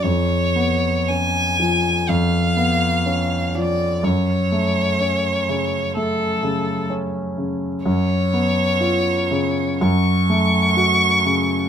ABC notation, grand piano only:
X:1
M:4/4
L:1/8
Q:1/4=62
K:C#phr
V:1 name="Grand piano" clef=bass
^E,, B, C ^E, E,, B, C E, | F,, A, C C, A, C, C C, | F,, B, ^E C, F,, A, F C, |]